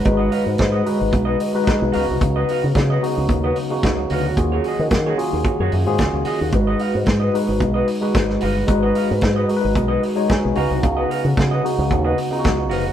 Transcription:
<<
  \new Staff \with { instrumentName = "Clean electric guitar" } { \time 4/4 \key gis \dorian \tempo 4 = 111 r16 <fis' b' dis''>16 <fis' b' eis''>16 r8 <fis' b' dis''>8 r8 <fis' b' dis''>8 r8. <fis' b' eis''>8 | r16 <fis' b' dis''>16 <fis' b' eis''>16 r8 <fis' b' dis''>8 r8 <fis' b' dis''>8 r8. <fis' b' eis''>8 | r16 <fis' gis' cis''>16 <fis' gis' dis''>16 r8 <fis' gis' cis''>8 r8 <fis' gis' cis''>8 r8. <fis' gis' dis''>8 | r16 <fis' b' dis''>16 <fis' b' eis''>16 r8 <fis' b' dis''>8 r8 <fis' b' dis''>8 r8. <fis' b' eis''>8 |
r16 <fis' b' dis''>16 <fis' b' eis''>16 r8 <fis' b' dis''>8 r8 <fis' b' dis''>8 r8. <fis' b' eis''>8 | r16 <fis' b' dis''>16 <fis' b' eis''>16 r8 <fis' b' dis''>8 r8 <fis' b' dis''>8 r8. <fis' b' eis''>8 | }
  \new Staff \with { instrumentName = "French horn section" } { \time 4/4 \key gis \dorian << { <gis fis' gis' b'>2.~ <gis fis' gis' b'>8 <cis fis b>8~ | <cis fis b>1 | <dis ais gis' eis''>1 | <gis fis' gis' b'>1~ |
<gis fis' gis' b'>2.~ <gis fis' gis' b'>8 <cis b fis'>8~ | <cis b fis'>1 | } \\ { dis'1~ | dis'1 | cis'1 | dis'1~ |
dis'1~ | dis'1 | } >> }
  \new Staff \with { instrumentName = "Tine electric piano" } { \time 4/4 \key gis \dorian << { r2 r8 dis''8 b'4 | r1 | r1 | r1 |
r4. b'8 dis''4 gis''4 | r1 | } \\ { <gis dis' fis' b'>4~ <gis dis' fis' b'>16 r16 <gis dis' fis' b'>4 r16 <gis dis' fis' b'>8. <cis b dis' fis'>8~ | <cis b dis' fis'>4 r8 <cis b dis' fis'>4 r16 <cis b dis' fis'>4 r16 | <dis cis' eis' fis' gis'>4~ <dis cis' eis' fis' gis'>16 r16 <dis cis' eis' fis' gis'>4 r16 <dis cis' eis' fis' gis'>4 r16 | <gis dis' fis' b'>4~ <gis dis' fis' b'>16 r16 <gis dis' fis' b'>4 r16 <gis dis' fis' b'>4 r16 |
<gis dis' fis' b'>4~ <gis dis' fis' b'>16 r16 <gis dis' fis' ais' b'>4 r16 <gis dis' fis' cis''>8. <cis b dis' fis'>8~ | <cis b dis' fis'>4 r8 <cis b dis' fis'>4 r16 <cis b dis' eis' fis'>4 r16 | } >> }
  \new Staff \with { instrumentName = "Fingered electric bass" } { \clef bass \time 4/4 \key gis \dorian gis,,8 r16 gis,16 gis,8 r16 gis,,16 b,,8 r8. b,,16 cis,16 bis,,16 | cis,8 r16 cis16 cis8 r16 cis,16 dis,8 r8 cis,8 d,8 | dis,8 r16 dis16 dis8 r16 dis,16 r16 fis,16 fis,16 gis,16 cis,16 cis,16 r16 dis,16 | gis,,8 r16 gis,16 gis,8 r16 gis,,16 b,,8 r8 gis,,8 g,,8 |
gis,,8 r16 gis,16 gis,8 r16 gis,,16 b,,8 r8. b,,16 cis,16 bis,,16 | cis,8 r16 cis16 cis8 r16 cis,16 dis,8 r8 cis,8 eis,,8 | }
  \new DrumStaff \with { instrumentName = "Drums" } \drummode { \time 4/4 <hh bd>8 hho8 <hh bd sn>8 hho8 <hh bd>8 hho8 <hh bd sn>8 hho8 | <hh bd>8 hho8 <hh bd sn>8 hho8 <hh bd>8 hho8 <hh bd sn>8 hho8 | <hh bd>8 hho8 <hh bd sn>8 hho8 <hh bd>8 hho8 <hh bd sn>8 hho8 | <hh bd>8 hho8 <hh bd sn>8 hho8 <hh bd>8 hho8 <hh bd sn>16 sn16 hho8 |
<hh bd>8 hho8 <hh bd sn>8 hho8 <hh bd>8 hho8 <hh bd sn>8 hho8 | <hh bd>8 hho8 <hh bd sn>8 hho8 <hh bd>8 hho8 <hh bd sn>8 hho8 | }
>>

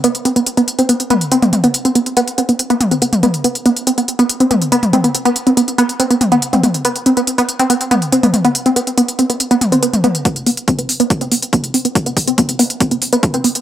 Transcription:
<<
  \new Staff \with { instrumentName = "Synth arpeggio sound" } { \time 4/4 \key c \lydian \tempo 4 = 141 b16 r16 c'16 b16 r16 b16 r16 c'16 b16 r16 b16 r16 c'16 b16 r16 b16 | r16 c'16 b16 r16 b16 r16 c'16 b16 r16 b16 r16 c'16 b16 r16 b16 r16 | b16 r16 b16 r16 c'16 b16 r16 b16 r16 c'16 b16 r16 b16 r16 c'16 b16 | r16 b16 r16 c'16 b16 r16 b16 r16 c'16 b16 r16 b16 r16 c'16 b16 r16 |
b16 r16 c'16 b16 r16 b16 r16 c'16 b16 r16 b16 r16 c'16 b16 r16 b16 | r16 c'16 b16 r16 b16 r16 c'16 b16 r16 b16 r16 c'16 b16 r16 b16 r16 | b16 r16 b16 r16 c'16 b16 r16 b16 r16 c'16 b16 r16 b16 r16 c'16 b16 | r16 b16 r16 c'16 b16 r16 b16 r16 c'16 b16 r16 b16 r16 c'16 b16 r16 | }
  \new DrumStaff \with { instrumentName = "Drums" } \drummode { \time 4/4 hh16 hh16 hh16 hh16 hh16 hh16 hh16 hh16 hh16 hh16 <hh toml>16 hh16 hh16 <hh toml>16 <hh toml>16 hh16 | hh16 hh16 hh16 hh16 hh16 hh16 hh16 hh16 hh16 hh16 <hh toml>16 hh16 hh16 <hh toml>16 <hh toml>16 hh16 | hh16 hh16 hh16 hh16 hh16 hh16 hh16 hh16 hh16 hh16 <hh toml>16 hh16 hh16 <hh toml>16 <hh toml>16 hh16 | hh16 hh16 hh16 hh16 hh16 hh16 hh16 hh16 hh16 hh16 <hh toml>16 hh16 hh16 <hh toml>16 <hh toml>16 hh16 |
hh16 hh16 hh16 hh16 hh16 hh16 hh16 hh16 hh16 hh16 <hh toml>16 hh16 hh16 <hh toml>16 <hh toml>16 hh16 | hh16 hh16 hh16 hh16 hh16 hh16 hh16 hh16 hh16 hh16 <hh toml>16 hh16 hh16 <hh toml>16 <hh toml>16 hh16 | <hh bd>16 hh16 hho16 hh16 <hh bd>16 hh16 hho16 hh16 <hh bd>16 hh16 hho16 hh16 <hh bd>16 hh16 hho16 hh16 | <hh bd>16 hh16 <hho bd>16 hh16 <hh bd>16 hh16 hho16 hh16 <hh bd>16 hh16 hho16 hh16 <hh bd>16 hh16 hho16 hh16 | }
>>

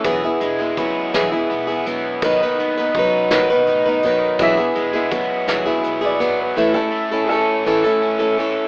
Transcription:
<<
  \new Staff \with { instrumentName = "Upright piano" } { \time 6/8 \key e \major \tempo 4. = 55 r2. | r2. | <dis'' e''>2~ <dis'' e''>16 d''8 b'16~ | b'16 a'8. <gis' a'>4. r8 | }
  \new Staff \with { instrumentName = "Steel-string acoustic guitar" } { \time 6/8 \key e \major <e fis b e' gis'>16 <b e' gis'>8 <b e' gis'>16 <fis b e' gis'>8 <e fis b e' gis'>16 <b e' gis'>8 <b e' gis'>16 <fis b e' gis'>8 | <dis fis b dis' b'>16 <b dis' b'>8 <b dis' b'>16 <fis b dis' b'>8 <dis fis b dis' b'>16 <b dis' b'>8 <b dis' b'>16 <fis b dis' b'>8 | <e fis b e' gis'>16 <b e' gis'>8 <b e' gis'>16 <fis b e' gis'>8 <e fis b e' gis'>16 <b e' gis'>8 <b e' gis'>16 <fis b e' gis'>8 | <a, e a cis' e' a'>16 <a cis' e' a'>8 <a cis' e' a'>16 <a cis' e' a'>8 <a, e a cis' e' a'>16 <a cis' e' a'>8 <a cis' e' a'>16 <a cis' e' a'>8 | }
  \new Staff \with { instrumentName = "Overdriven electric guitar" } { \clef bass \time 6/8 \key e \major e,8 gis8 b8 e8 b8 e8 | dis8 b8 dis'8 dis8 dis'8 dis8 | e,8 gis8 b8 fis8 b8 fis8 | a,8 a8 cis'8 e8 cis'8 e8 | }
  \new Staff \with { instrumentName = "Upright bass" } { \clef bass \time 6/8 \key e \major e,,8 e,,8 cis,8 e,,8 b,,8 e,,8 | dis,8 dis,8 cis,8 dis,8 a,,8 fis,8 | e,,8 e,,8 cis,8 e,,8 b,,8 gis,,8 | r2. | }
  \new DrumStaff \with { instrumentName = "Drums" } \drummode { \time 6/8 <hh bd>8 hh8 <hh bd>8 <hh sn>8 hh8 hh8 | <hh bd>8 hh8 <hh bd>8 <hh sn>8 hh8 hh8 | <hh bd>8 hh8 <hh bd>8 <hh sn>8 hh8 hh8 | r4. r4. | }
>>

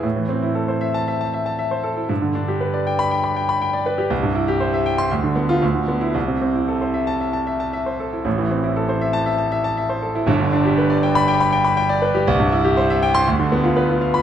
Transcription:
\new Staff \with { instrumentName = "Grand piano" } { \time 4/4 \key a \minor \tempo 4 = 119 << { r4. r16 a''8 r4. r16 | r4. r16 b''8 r4. r16 | r4. r16 c'''16 r8. f'16 r8. e'16 | r4. r16 a''8 r4. r16 |
r4. r16 a''8 r4. r16 | r4. r16 b''8 r4. r16 | r4. r16 c'''16 r4. r16 b''16 | } \\ { a,16 e16 c'16 e'16 a'16 c''16 e''8 e''16 a''16 e''16 a''16 e''16 c''16 a'16 e'16 | g,16 d16 d'16 g'16 b'16 d''16 g''8 g''16 b''16 g''16 b''16 g''16 d''16 b'16 g'16 | c,16 g,16 e'16 g'16 c''16 e''16 g''8 d,16 d16 b8 d,16 d16 b8 | c,16 c16 c'16 e'16 a'16 c''16 e''8 e''16 a''16 e''16 a''16 e''16 c''16 a'16 e'16 |
<a,, a,>16 e16 c'16 e'16 a'16 c''16 e''8 e''16 a''16 e''16 a''16 e''16 c''16 a'16 e'16 | <g,, g,>16 d16 d'16 g'16 b'16 d''16 g''8 g''16 b''16 g''16 b''16 g''16 d''16 b'16 g'16 | c,16 g,16 e'16 g'16 c''16 e''16 g''8 d,16 d16 b16 f'16 b'16 f'16 f''8 | } >> }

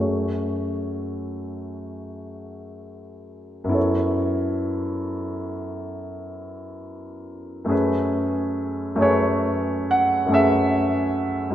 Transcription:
\new Staff \with { instrumentName = "Grand piano" } { \time 9/8 \key fis \minor \tempo 4. = 47 << { r1 r8 | r1 r8 | r4. cis''4 fis''8 e''4. | } \\ { <fis, a fis' gis' cis''>1~ <fis, a fis' gis' cis''>8 | <fis, b e' a' cis''>1~ <fis, b e' a' cis''>8 | <fis, a cis' gis' b'>4. <fis, a cis' gis' b'>4. <fis, a cis' gis' b'>4. | } >> }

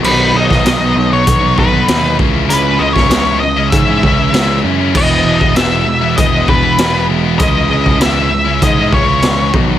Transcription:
<<
  \new Staff \with { instrumentName = "Lead electric guitar" } { \time 4/4 \key cis \minor \tempo 4 = 98 b'8 dis''4~ dis''16 cis''8. b'4 r8 | b'8 dis''16 cis''8. dis''8 e''4. r8 | dis''4 e''4 dis''8 b'4 r8 | dis''4 e''4 dis''8 cis''4 r8 | }
  \new Staff \with { instrumentName = "Distorted electric guitar" } { \time 4/4 \key cis \minor <b, dis fis b dis'>8 <dis fis b dis'>8 <b, dis fis b dis'>16 <fis b dis'>8 <fis b dis'>8 <fis b dis'>16 <dis fis b dis'>16 <fis b dis'>16 <b, dis fis b dis'>8 <cis gis cis' e'>16 <gis cis' e'>16 | <cis gis cis' e'>8 <cis gis cis' e'>8 <cis gis cis' e'>16 <gis cis' e'>8 <gis cis' e'>8 <gis cis' e'>16 <cis gis cis' e'>16 <gis cis' e'>16 <cis gis cis' e'>8 <cis gis cis' e'>16 <gis cis' e'>16 | <e gis b e'>8 <e gis b e'>8 <e gis b e'>16 <gis b e'>8 <gis b e'>8 <gis b e'>16 <e gis b e'>16 <gis b e'>16 <e gis b e'>8 <e gis b e'>16 <gis b e'>16 | <cis gis cis' e'>8 <cis gis cis' e'>8 <cis gis cis' e'>16 <gis cis' e'>8 <gis cis' e'>8 <gis cis' e'>16 <cis gis cis' e'>16 <gis cis' e'>16 <cis gis cis' e'>8 <b, dis fis b dis'>16 <fis b dis'>16 | }
  \new Staff \with { instrumentName = "Distorted electric guitar" } { \time 4/4 \key cis \minor <b, dis fis b dis'>8. <fis b dis'>16 <b, dis fis b dis'>8 <dis fis b dis'>8. <fis b dis'>16 <dis fis b dis'>8 <b, dis fis b dis'>8 <cis gis cis' e'>16 <gis cis' e'>16 | <cis gis cis' e'>8. <gis cis' e'>16 <cis gis cis' e'>8 <cis gis cis' e'>8. <gis cis' e'>16 <cis gis cis' e'>8 <cis gis cis' e'>8. <gis cis' e'>16 | <e gis b e'>8. <gis b e'>16 <e gis b e'>8 <e gis b e'>8. <gis b e'>16 <e gis b e'>8 <e gis b e'>8. <gis b e'>16 | <cis gis cis' e'>8. <gis cis' e'>16 <cis gis cis' e'>8 <cis gis cis' e'>8. <gis cis' e'>16 <cis gis cis' e'>8 <cis gis cis' e'>8 <b, dis fis b dis'>16 <fis b dis'>16 | }
  \new Staff \with { instrumentName = "Picked electric bass" } { \clef bass \time 4/4 \key cis \minor b,,8 b,,8 b,,8 b,,8 b,,8 b,,8 dis,8 cis,8 | cis,8 cis,8 cis,4 gis,8 cis,8 cis,8 fis,8 | e,,8 e,,8 e,,8 e,,8 e,,8 e,,8 e,,8 e,,8 | cis,8 cis,8 cis,4 gis,8 cis,8 cis,8 b,,8 | }
  \new DrumStaff \with { instrumentName = "Drums" } \drummode { \time 4/4 cymc8. <bd sn>16 <hh sn>4 <hh bd>8 bd8 <hh sn>8 bd8 | hh8. <bd sn>16 <hh sn>4 <hh bd>8 bd8 <hh sn>4 | <cymc bd>8. bd16 <hh sn>4 <hh bd>8 bd8 <hh sn>4 | <hh bd>8. bd16 <hh sn>4 <hh bd>8 bd8 <hh sn>8 bd8 | }
>>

